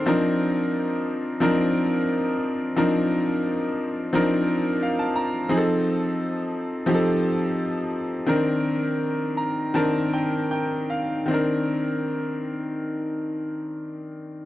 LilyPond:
\new Staff \with { instrumentName = "Grand piano" } { \time 4/4 \key c \dorian \tempo 4 = 87 << { c''16 r2. r8. | r2. f''16 a''16 bes''8 | r1 | r4. bes''8 a''8 g''8 g''8 f''8 |
r1 | } \\ { <f c' d' ees' bes'>4.~ <f c' d' ees' bes'>16 r16 <f c' d' ees' bes'>4.~ <f c' d' ees' bes'>16 r16 | <f c' d' ees' bes'>4.~ <f c' d' ees' bes'>16 r16 <f c' d' ees' bes'>4.~ <f c' d' ees' bes'>16 r16 | <f c' ees' aes' a'>4.~ <f c' ees' aes' a'>16 r16 <f c' ees' g' a'>4.~ <f c' ees' g' a'>16 r16 | <ees c' d' bes'>4.~ <ees c' d' bes'>16 r16 <ees c' d' bes'>4.~ <ees c' d' bes'>16 r16 |
<ees c' d' bes'>1 | } >> }